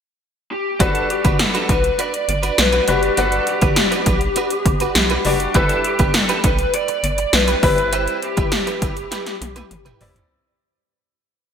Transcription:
0.51 G4
0.79 G1 G3 D4 F#4 A4 B4, kick, closed hi-hat
0.95 closed hi-hat
1.10 G4, muted clean electric guitar stroke, closed hi-hat
1.24 G1 D4 F#4 B4, kick, closed hi-hat
1.39 A4, snare, closed hi-hat
1.54 D4 F#4 B4, closed hi-hat
1.69 B1 D4 F#4 B4, kick, closed hi-hat
1.84 muted clean electric guitar stroke, closed hi-hat
1.98 D4 F#4 B4 D5, closed hi-hat
2.13 muted clean electric guitar stroke, closed hi-hat
2.28 G1 D5, muted clean electric guitar stroke, closed hi-hat
2.43 D4 F#4 B4, closed hi-hat
2.57 B1 B4, muted clean electric guitar stroke, snare, closed hi-hat
2.72 D4 F#4 B4, closed hi-hat
2.87 F#1 G3 D4 F#4 G4 B4, closed hi-hat
3.02 muted clean electric guitar stroke, closed hi-hat
3.17 G1 G3 D4 F#4 A4 B4 F#5, closed hi-hat
3.32 closed hi-hat
3.47 G4, muted clean electric guitar stroke, closed hi-hat
3.61 G1 D4 F#4 B4, kick, closed hi-hat
3.76 muted clean electric guitar stroke, snare, closed hi-hat
3.91 D4 F#4 B4, closed hi-hat
4.06 B1 D4 F#4 B4, kick, closed hi-hat
4.21 muted clean electric guitar stroke, closed hi-hat
4.36 D4 F#4 B4, closed hi-hat
4.50 muted clean electric guitar stroke, closed hi-hat
4.66 G1, muted clean electric guitar stroke, kick, closed hi-hat
4.80 D4 F#4 B4, closed hi-hat
4.95 B1, muted clean electric guitar stroke, snare, closed hi-hat
5.10 D4 F#4 B4, closed hi-hat
5.25 F#1 G3 D4 F#4 G4 B4 D5, open hi-hat
5.40 muted clean electric guitar stroke, closed hi-hat
5.54 G1 G3 D4 E4 G4 A4 B4, kick, closed hi-hat
5.69 closed hi-hat
5.84 G4, muted clean electric guitar stroke, closed hi-hat
5.99 G1 D4 G4 B4, kick, closed hi-hat
6.14 A4, muted clean electric guitar stroke, snare, closed hi-hat
6.29 D4 G4 B4, closed hi-hat
6.44 B1 D4 G4 B4, kick, closed hi-hat
6.59 muted clean electric guitar stroke, closed hi-hat
6.74 D5, muted clean electric guitar stroke, closed hi-hat
6.88 muted clean electric guitar stroke, closed hi-hat
7.03 G1 D5, closed hi-hat
7.18 muted clean electric guitar stroke, closed hi-hat
7.33 B1 B4, muted clean electric guitar stroke, snare, closed hi-hat
7.48 D4 G4 B4, closed hi-hat
7.63 G1 G3 C4 E4 G4 B4, kick, open hi-hat
7.78 muted clean electric guitar stroke, closed hi-hat
7.92 E4 G4 B4 C5, closed hi-hat
8.08 closed hi-hat
8.22 G4, muted clean electric guitar stroke, closed hi-hat
8.37 G1 E4 G4 B4, kick, closed hi-hat
8.52 muted clean electric guitar stroke, snare, closed hi-hat
8.67 E4 G4 B4, closed hi-hat
8.81 G1 E4 G4 B4, kick, closed hi-hat
8.97 muted clean electric guitar stroke, closed hi-hat
9.11 E4 G4 B4, snare, closed hi-hat
9.26 muted clean electric guitar stroke, snare, closed hi-hat
9.41 B1, muted clean electric guitar stroke, closed hi-hat, high tom
9.56 E4 G4 B4, closed hi-hat, high tom
9.71 G1, muted clean electric guitar stroke, closed hi-hat, mid tom
9.85 E4 G4 B4, closed hi-hat, mid tom
10.01 F#1 G3 C4 E4 G4 B4 D5, floor tom, open hi-hat
10.16 muted clean electric guitar stroke, closed hi-hat, floor tom

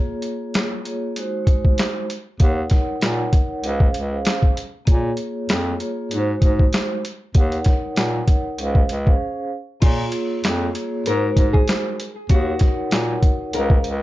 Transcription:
Already playing: A#3 F4 G#4 C#5
0.22 closed hi-hat
0.54 snare, clap, closed hi-hat
0.85 A#3 F4 G#4 C#5, closed hi-hat
1.16 G#3 D#4 F#4 C5, closed hi-hat
1.45 G#3 D#4 F#4 C5, kick, closed hi-hat
1.65 kick
1.78 snare, clap, closed hi-hat
2.10 closed hi-hat
2.39 D#2 D#4 A#4 C#5 F#5, kick, closed hi-hat
2.69 D#4 A#4 C#5 F#5, kick, snare, closed hi-hat
3.00 A#2 D#4 A#4 C#5, snare, clap, closed hi-hat
3.33 kick, closed hi-hat
3.63 C#2 C#4 G#4 C5 F5, closed hi-hat
3.80 kick
3.94 C#2, closed hi-hat
4.10 C#4 G#4 C5 F5
4.25 snare, clap, closed hi-hat
4.43 kick
4.57 closed hi-hat
4.86 A#2 A#3 F4 G#4 C#5, kick, closed hi-hat
5.17 closed hi-hat
5.49 F2, snare, clap, closed hi-hat
5.80 A#3 F4 G#4 C#5, closed hi-hat
6.11 G#2 G#3 D#4 F#4 C5, closed hi-hat
6.40 G#2 G#3 D#4 F#4 C5, kick, closed hi-hat
6.59 kick
6.73 snare, clap, closed hi-hat
7.05 closed hi-hat
7.34 D#2 D#4 A#4 C#5 F#5, kick, closed hi-hat
7.52 closed hi-hat
7.64 D#4 A#4 C#5 F#5, kick, snare, closed hi-hat
7.95 A#2 D#4 A#4 C#5 F#5, snare, clap, closed hi-hat
8.28 kick, closed hi-hat
8.58 C#2 C#4 G#4 C5 F5, closed hi-hat
8.75 kick
8.89 C#2, closed hi-hat
9.05 C#4 G#4 C5 F5, kick
9.80 A#2 A#3 F4 G#4 C#5, kick, closed hi-hat, crash
10.12 closed hi-hat
10.44 F2, snare, clap, closed hi-hat
10.74 A#3 F4 G#4 C#5, closed hi-hat
11.06 G#2 G#3 D#4 F#4 A#4 C5, closed hi-hat
11.34 G#2 G#3 D#4 F#4 C5, kick, closed hi-hat
11.53 G#4, kick
11.68 snare, clap, closed hi-hat
12.00 closed hi-hat
12.29 D#2 D#4 F#4 A#4 C#5 F#5, kick, closed hi-hat
12.59 D#4 A#4 C#5 F#5, kick, snare, closed hi-hat
12.90 A#2 D#4 A#4 C#5, snare, clap, closed hi-hat
13.23 kick, closed hi-hat
13.53 C#2 C#4 G#4 A#4 C5 F5, closed hi-hat
13.70 kick
13.84 C#2, closed hi-hat

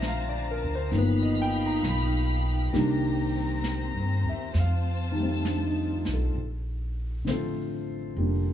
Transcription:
Already playing: A#1 D3 F3 A3 C4 D4 C5 E5 G5 A5 A#5
0.02 snare, hi-hat pedal
0.07 F5
0.29 D5
0.51 A#4
0.64 D2
0.75 C5
0.90 G1 D#3 F3 A#3 D#4 G4 F5 B5, brush sweep, snare
0.96 B3 B4
1.23 D#5
1.42 G5
1.66 A#5
1.82 B1, snare, hi-hat pedal
1.89 B5
2.71 C2 D#3 G3 A#3 C4 D4 C5 A#5, brush sweep, snare
3.64 snare, hi-hat pedal
3.92 G2
4.24 D#2
4.29 E5
4.50 F2 F4 A5, brush sweep, snare
4.59 F5
5.12 D#3
5.16 G3
5.20 A3 C4
5.44 D4, snare, hi-hat pedal
5.67 D#4
5.91 F4
6.05 B1, snare
6.13 A4
6.35 A#1, brush sweep
7.25 A1 D3 F3 A3 C5, snare, hi-hat pedal
7.29 C4 F4 A4
8.17 F1 G3 A#3 D4, brush sweep

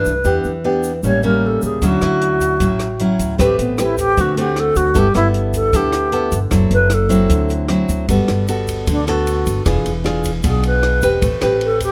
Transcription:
Already playing: G2 E3 A3 D4 B4
0.05 C2, shaker
0.24 E2 E3 B3 D4 G4, shaker
0.44 E2, shaker
0.64 B3 D4 G4
0.83 shaker
1.03 A1 A2 G3 A#3 C#4 C#5, shaker
1.22 G3 A#3 C#4 A#4, shaker
1.46 A4
1.62 C#2 G#4, shaker
1.82 D2 D3 F#3 C#4 E4, kick, closed hi-hat, shaker
1.86 F#4
2.01 D2 F#3 C#4 E4, cross-stick, closed hi-hat, shaker
2.21 closed hi-hat
2.41 kick, closed hi-hat, shaker
2.60 A1 A2 F#3 C#4 E4, kick, closed hi-hat, shaker
2.79 cross-stick, closed hi-hat, shaker
2.99 F#3 C#4 E4, closed hi-hat
3.19 D2, kick, closed hi-hat, shaker
3.38 A1 A3 C4 G4 B4, kick, cross-stick, closed hi-hat, shaker
3.43 G4
3.59 A1 B3, closed hi-hat, shaker
3.78 C4 G4 B4, cross-stick, closed hi-hat, shaker
3.83 E4
3.98 G4, kick, closed hi-hat, shaker
4.17 D2 D3 A3 C4 F#4, kick, closed hi-hat, shaker
4.37 A3 C4 F#4 G4, closed hi-hat, shaker
4.56 A4, cross-stick, closed hi-hat
4.76 D2 F#4, kick, closed hi-hat, shaker
4.94 G1 G3 B3 E4 A4, kick, closed hi-hat, shaker
4.98 G4
5.14 G1 B3 E4 A4, cross-stick, closed hi-hat, shaker
5.34 closed hi-hat
5.54 A4, kick, closed hi-hat, shaker
5.73 D2 D3 B3 E4 G4 A4, kick, closed hi-hat, shaker
5.92 cross-stick, closed hi-hat, shaker
6.12 B3 E4 A4, closed hi-hat
6.32 G1, kick, closed hi-hat, shaker
6.51 F#1 F#3 C4 E4 A4, kick, cross-stick, closed hi-hat, shaker
6.70 F#1 B4, closed hi-hat, shaker
6.90 cross-stick, closed hi-hat, shaker
6.94 A4
7.09 F#3 C4 E4, kick, closed hi-hat, shaker
7.29 D2 D3, kick, closed hi-hat, shaker
7.49 closed hi-hat, shaker
7.68 F#3 C4 E4, cross-stick, closed hi-hat
7.89 D2, kick, closed hi-hat, shaker
8.08 G1 G3 B3 F#4 A4, kick, ride, shaker
8.28 G1, cross-stick, ride, shaker
8.48 B3 F#4 A4, ride, shaker
8.68 kick, ride, shaker
8.87 D2 D3 D4, kick, ride, shaker
9.07 B3 F#4 A4, cross-stick, ride, shaker
9.27 ride, shaker
9.46 G1, kick, ride, shaker
9.65 E1 E3 D4 F4 G#4, kick, cross-stick, ride, shaker
9.85 E1, ride, shaker
10.04 D4 F4 G#4, cross-stick, ride
10.24 kick, ride, shaker
10.43 B1 B2 D4 F4 G#4, kick, ride, shaker
10.48 G#4
10.63 B4, ride, shaker
10.83 cross-stick, ride
11.02 E1 C4 G4 B4, kick, ride, shaker
11.22 A1 A3, kick, ride, shaker
11.41 A1 C4 G4 B4, cross-stick, ride, shaker
11.61 ride
11.65 A4
11.80 G4, kick, ride, shaker

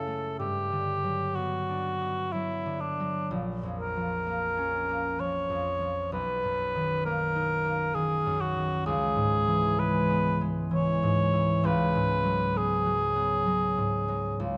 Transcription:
Already playing: F#2 C#3 C#4 E4 A4
0.08 A3
0.39 G2 G4
0.72 D3
1.04 F#3
1.35 B3 F#4
1.69 D4
2.01 B3
2.32 F#3 E4
2.66 D3
2.80 D4
3.00 F#3
3.31 A#1
3.63 F2
3.78 A#4
3.96 F3
4.26 A#3
4.57 C#4
4.89 A#3
5.19 F3 C#5
5.50 F2
5.81 F3
6.12 B1 B4
6.44 F#2
6.76 D#3
7.05 A#3 A#4
7.36 D#4
7.65 A#3
7.94 D#3 G#4
8.26 F#2
8.41 F#4
8.57 D#3
8.86 C#2 G#4
9.16 G#2
9.48 E3
9.79 G#3 B4
10.10 B3
10.41 G#3
10.71 E3 C#5
11.03 G#2
11.33 E3
11.63 C#2 B4
11.95 G#2
12.24 F#3
12.55 B3 G#4
12.86 F#3
13.16 B3
13.46 F#3
13.78 G#2
14.08 F#3
14.40 C#2

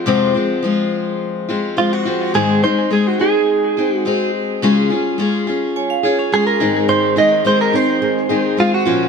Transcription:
0.06 F2 C3 F3 G#3 C4 F4
0.34 F3 G#3 C4 F4
0.63 F3 G#3 C4 F4
1.49 F3 G#3 C4 F4
1.77 F3 G#3 C4 F4
1.93 F#4
2.05 F3 G#3 C4 F4
2.34 G#2 D#3 G#3 C4 D#4 G#4
2.63 G#3 C4 D#4 G#4 C5
2.90 G#3 C4 D#4 G#4
3.07 F#4
3.19 G#3 C4 D#4 G#4
3.77 G#3 C4 D#4 G#4
3.96 F#4
4.05 G#3 C4 D#4 G#4
4.62 C#3 G#3 C#4 F4 G#4
4.90 C#4 F4 G#4
5.18 G#3 C#4 F4 G#4
5.47 C#4 F4 G#4
5.76 C#5 G#5
5.90 F5
6.03 C#4 F4 G#4 C#5
6.19 C#4 G#4
6.32 G#3 C#4 F4 G#4
6.47 A#4
6.60 G#2 D#3 G#3 C4 D#4 G#4
6.89 D#3 C5
7.16 G#3 C4 D#4 G#4 D#5
7.45 D#3 G#3 C4 D#4 G#4 C5
7.61 A#4
7.72 G#3 C4 D#4 G#4 C5
8.02 G#3
8.29 D#3 G#3 C4 D#4 G#4
8.57 G#3 C4 D#4 F4 G#4
8.74 F#4
8.85 A#2 F3 A#3 C#4 F4

